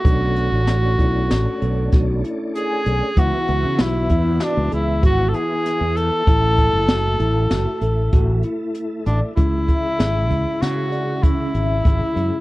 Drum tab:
HH |xxxxxxxxxx|xxxxxxxxxx|xxxxxxxxxx|xxxxxxxxxx|
SD |--o-o-o---|--o-o---o-|--o-o-----|--o-o-----|
BD |o--o--o---|o--o--o---|oo----o---|oo-o--o-o-|